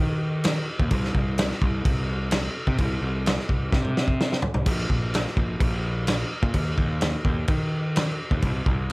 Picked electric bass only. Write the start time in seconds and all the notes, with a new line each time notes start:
Already playing: D#3
0.80 D#2
0.91 C2
1.15 C2
1.61 C2
1.85 C2
2.68 C3
2.78 C2
3.01 C2
3.49 C2
3.73 C3
4.54 C2
4.66 A#1
4.89 A#1
5.37 A#1
5.61 A#1
6.43 A#2
6.54 D#2
6.78 D#2
7.25 D#2
7.48 D#3
8.31 D#2
8.43 C2
8.66 C2